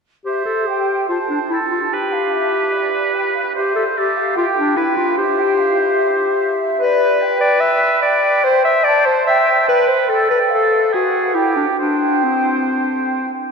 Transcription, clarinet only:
0.25 0.45 G4 medium
0.45 0.68 A4 soft
0.67 1.08 G4 soft
1.09 1.18 F4 soft
1.30 1.39 D4 soft
1.50 1.59 E4 soft
1.71 1.80 F4 soft
1.92 3.33 G4 medium
3.55 3.75 G4 medium
3.76 3.85 A4 medium
3.96 4.36 G4 medium
4.37 4.46 F4 medium
4.58 4.76 D4 medium
4.76 4.96 E4 medium
4.97 5.20 F4 medium
5.18 6.61 G4 medium
6.80 7.37 B4 medium
7.41 7.62 D5 medium
7.60 8.01 E5 medium
8.02 8.46 D5 medium
8.44 8.64 C5 medium
8.65 8.86 E5 medium
8.84 9.07 D5 medium
9.06 9.26 C5 medium
9.27 9.68 E5 medium
9.69 9.89 B4 medium
9.88 10.10 C5 medium
10.09 10.30 A4 medium
10.30 10.40 B4 medium
10.52 10.92 A4 medium
10.94 11.36 F#4 medium
11.34 11.56 E4 medium
11.56 11.66 D4 soft
11.80 12.25 D4 soft
12.24 13.33 C4 soft

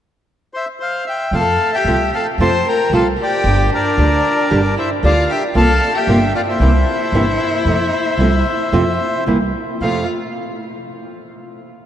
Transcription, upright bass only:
1.31 1.54 F2 medium
1.85 2.08 C2 medium
2.38 2.61 F2 medium
2.90 3.13 C2 medium
3.44 3.67 G1 medium
3.97 4.20 D2 medium
4.51 4.73 G1 medium
5.03 5.25 D2 medium
5.55 5.78 C2 medium
6.07 6.30 G1 medium
6.59 6.82 C2 medium
7.12 7.35 G1 medium
7.65 7.88 F2 medium
8.18 8.41 C2 medium
8.72 8.95 F2 medium
9.26 9.50 C2 medium
9.80 10.03 F2 soft

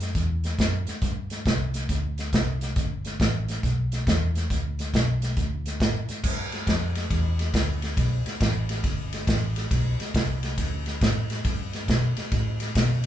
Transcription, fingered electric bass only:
0.00 0.14 F#2 medium
0.15 0.58 E2 medium
0.59 0.85 F#2 medium
0.88 muted fingered electric bass stroke soft
1.02 1.44 G2 medium
1.46 1.88 C2 medium
1.89 2.32 D2 medium
2.33 2.75 C2 medium
2.76 3.19 G1 medium
3.20 3.62 A1 medium
3.63 4.05 B1 medium
4.07 4.49 E2 medium
4.50 4.92 D2 medium
4.94 5.36 B1 medium
5.37 5.79 D2 medium
5.80 6.07 A2 medium
6.09 muted fingered electric bass stroke soft
6.23 6.66 G2 medium
6.67 7.09 F2 medium
7.11 7.53 E2 medium
7.54 7.96 D2 medium
7.97 8.24 B1 medium
8.26 muted fingered electric bass stroke soft
8.41 8.83 A1 medium
8.84 9.26 G1 medium
9.27 9.70 A1 loud
9.71 9.97 B1 medium
10.15 10.57 C2 medium
10.58 11.00 D2 medium
11.02 11.44 A2 medium
11.45 11.87 G2 medium
11.88 12.15 B2 medium
12.18 muted fingered electric bass stroke soft
12.32 12.74 A2 medium
12.76 13.06 B2 medium

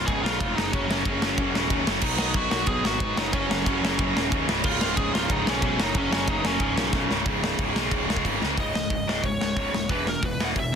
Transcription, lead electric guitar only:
0.06 0.22 G#4 loud
0.23 0.57 F4 loud
0.55 0.72 D#4 loud
0.73 1.83 C#4 loud
2.04 2.18 D#4 medium
2.19 2.36 D#4 loud
2.37 2.50 F#4 loud
2.51 2.67 F#4 medium
2.68 2.85 G#4 loud
2.86 3.19 F#4 loud
3.18 3.33 D#4 medium
3.34 4.45 C#4 loud
4.65 4.80 F4 loud
4.82 4.97 F4 loud
4.97 5.13 G#4 loud
5.14 5.31 F4 medium
5.31 5.48 D#4 medium
5.50 5.62 C#4 medium
5.63 5.80 C#4 medium
5.83 5.97 D#4 medium
5.98 6.11 C#4 medium
6.12 6.29 C#4 medium
6.29 6.46 D#4 medium
6.46 7.11 C#4 medium
8.61 9.25 D#5 medium
9.26 9.93 C#5 medium
9.89 10.07 B4 medium
10.09 10.25 A#4 medium
10.25 10.42 B4 medium
10.44 10.49 F#5 medium
10.60 10.75 E5 medium

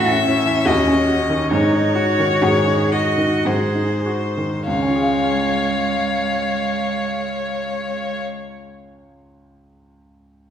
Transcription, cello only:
0.00 0.25 F#4 medium
0.27 1.52 C#4 medium
1.50 1.96 D#4 medium
1.95 2.44 F#4 medium
2.43 2.94 G#4 medium
2.92 3.48 F#4 medium
3.46 4.06 G#4 medium
4.67 8.18 G#3 soft

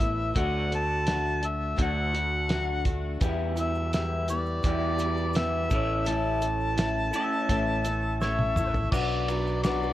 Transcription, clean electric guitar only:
0.00 0.33 A2 medium
0.00 0.33 E3 medium
0.00 0.34 A3 medium
0.00 0.34 B3 medium
0.00 0.34 E4 medium
0.35 1.76 D3 medium
0.35 1.76 A3 medium
0.35 1.77 D4 medium
0.35 1.78 F#4 medium
1.78 3.19 D3 medium
1.78 3.19 A3 medium
1.78 3.20 D4 medium
1.78 3.21 F#4 medium
3.21 4.62 E2 medium
3.21 4.62 B2 medium
3.21 4.64 E3 medium
3.21 4.63 G3 medium
3.21 4.63 B3 medium
3.21 4.67 E4 loud
4.63 5.68 E2 medium
4.63 5.69 B2 medium
4.63 5.69 E3 medium
4.63 5.70 G3 medium
4.63 5.70 B3 medium
4.67 5.71 E4 medium
5.71 7.12 A2 medium
5.71 7.13 E3 medium
5.71 7.13 A3 medium
5.71 7.13 C#4 loud
5.71 7.12 E4 medium
7.13 8.56 E3 medium
7.13 8.55 A3 medium
7.13 8.55 C#4 medium
7.13 8.54 E4 medium
7.17 8.56 A2 medium
8.93 9.93 B2 medium
9.29 9.63 F#3 medium
9.64 9.93 F#3 medium

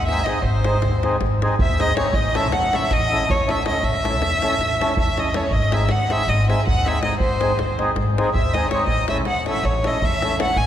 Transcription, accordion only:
0.09 0.21 G#3 medium
0.09 0.21 C4 medium
0.09 0.22 D#4 soft
0.09 0.22 G#4 medium
0.27 0.38 G#3 medium
0.27 0.39 C4 medium
0.27 0.39 D#4 medium
0.27 0.39 G#4 medium
0.65 0.77 G#3 medium
0.65 0.77 C4 medium
0.65 0.77 D#4 medium
0.65 0.78 G#4 medium
1.03 1.16 G#3 medium
1.03 1.16 C4 medium
1.03 1.16 D#4 medium
1.03 1.17 G#4 medium
1.42 1.54 G#3 medium
1.42 1.54 C4 medium
1.42 1.55 D#4 medium
1.42 1.55 G#4 medium
1.79 1.91 G#3 medium
1.79 1.91 C4 medium
1.79 1.92 D#4 medium
1.79 1.92 G#4 medium
1.96 2.08 G#3 medium
1.96 2.08 C4 medium
1.96 2.09 D#4 soft
1.96 2.09 G#4 medium
2.34 2.46 A3 medium
2.34 2.47 C#4 medium
2.34 2.47 E4 medium
2.34 2.47 A4 medium
2.72 2.84 A3 medium
2.72 2.85 C#4 medium
2.72 2.85 E4 medium
2.72 2.85 A4 medium
3.10 3.23 A3 medium
3.10 3.23 C#4 medium
3.10 3.23 E4 medium
3.10 3.24 A4 medium
3.47 3.59 A3 medium
3.47 3.59 C#4 medium
3.47 3.60 E4 medium
3.47 3.60 A4 medium
3.65 3.77 A3 medium
3.65 3.77 C#4 medium
3.65 3.77 E4 medium
3.65 3.78 A4 medium
4.03 4.15 A3 medium
4.03 4.16 C#4 medium
4.03 4.16 E4 medium
4.03 4.16 A4 medium
4.42 4.54 A3 medium
4.42 4.54 C#4 medium
4.42 4.55 E4 medium
4.42 4.55 A4 medium
4.81 4.93 A3 medium
4.81 4.93 C#4 medium
4.81 4.93 E4 medium
4.81 4.93 A4 medium
5.17 5.29 A3 medium
5.17 5.29 C#4 medium
5.17 5.29 E4 soft
5.17 5.29 A4 medium
5.34 5.46 A3 medium
5.34 5.46 C#4 medium
5.34 5.46 E4 medium
5.34 5.46 A4 medium
5.71 5.84 G#3 medium
5.71 5.84 C4 medium
5.71 5.84 D#4 soft
5.71 5.85 G#4 medium
6.10 6.22 G#3 medium
6.10 6.22 C4 medium
6.10 6.23 D#4 soft
6.10 6.23 G#4 medium
6.48 6.60 G#3 medium
6.48 6.60 C4 medium
6.48 6.61 D#4 medium
6.48 6.61 G#4 medium
6.86 6.97 G#3 medium
6.86 6.97 C4 medium
6.86 6.98 D#4 medium
6.86 6.98 G#4 medium
7.02 7.14 G#3 medium
7.02 7.14 C4 medium
7.02 7.15 D#4 medium
7.02 7.15 G#4 medium
7.40 7.52 G#3 medium
7.40 7.53 C4 medium
7.40 7.53 D#4 medium
7.40 7.53 G#4 medium
7.78 7.90 G#3 medium
7.78 7.91 C4 medium
7.78 7.91 D#4 medium
7.78 7.91 G#4 medium
8.17 8.29 G#3 medium
8.17 8.29 C4 medium
8.17 8.30 D#4 medium
8.17 8.30 G#4 medium
8.55 8.66 G#3 medium
8.55 8.66 C4 medium
8.55 8.67 D#4 medium
8.55 8.67 G#4 medium
8.73 8.83 G#3 medium
8.73 8.84 C4 medium
8.73 8.84 D#4 medium
8.73 8.84 G#4 medium
9.09 9.21 A3 medium
9.09 9.21 C#4 medium
9.09 9.22 E4 medium
9.09 9.22 A4 medium
9.47 9.59 A3 medium
9.47 9.59 C#4 soft
9.47 9.60 E4 medium
9.47 9.60 A4 medium
9.85 9.97 A3 medium
9.85 9.97 C#4 medium
9.85 9.98 E4 medium
9.85 9.98 A4 medium
10.22 10.34 A3 medium
10.22 10.34 C#4 medium
10.22 10.34 E4 medium
10.22 10.35 A4 medium
10.39 10.51 A3 medium
10.39 10.51 C#4 medium
10.39 10.51 E4 medium
10.39 10.52 A4 medium

